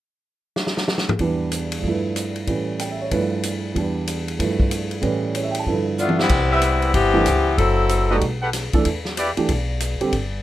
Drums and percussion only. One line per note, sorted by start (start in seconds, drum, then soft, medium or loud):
0.56 snare medium
0.67 snare medium
0.77 snare medium
0.88 snare medium
0.98 snare medium
1.09 mid tom medium
1.19 kick soft
1.19 ride soft
1.52 hi-hat pedal soft
1.52 ride medium
1.72 ride medium
1.84 kick soft
2.16 hi-hat pedal soft
2.16 ride soft
2.36 ride soft
2.47 kick soft
2.47 ride soft
2.79 hi-hat pedal medium
2.79 ride medium
3.11 kick soft
3.11 ride soft
3.43 hi-hat pedal soft
3.43 ride medium
3.76 kick soft
3.76 ride soft
4.07 hi-hat pedal medium
4.07 ride medium
4.28 ride soft
4.40 kick soft
4.40 ride soft
4.60 kick medium
4.71 hi-hat pedal soft
4.71 ride medium
4.91 ride soft
5.03 kick soft
5.03 ride soft
5.35 hi-hat pedal soft
5.35 ride medium
5.55 ride medium
5.67 kick soft
5.98 hi-hat pedal soft
6.09 high tom soft
6.19 snare medium
6.29 kick medium
6.29 crash medium
6.62 hi-hat pedal soft
6.62 ride medium
6.82 ride soft
6.94 kick soft
6.94 ride medium
7.26 hi-hat pedal soft
7.26 ride medium
7.58 kick soft
7.58 ride soft
7.89 hi-hat pedal soft
7.89 ride medium
8.21 kick soft
8.21 ride soft
8.53 snare soft
8.53 hi-hat pedal medium
8.53 ride medium
8.73 kick soft
8.73 ride soft
8.85 kick soft
8.85 ride medium
9.05 snare soft
9.17 hi-hat pedal medium
9.17 ride medium
9.37 ride soft
9.49 kick soft
9.49 ride medium
9.80 hi-hat pedal medium
9.80 ride medium
10.01 ride soft
10.13 kick soft
10.13 ride soft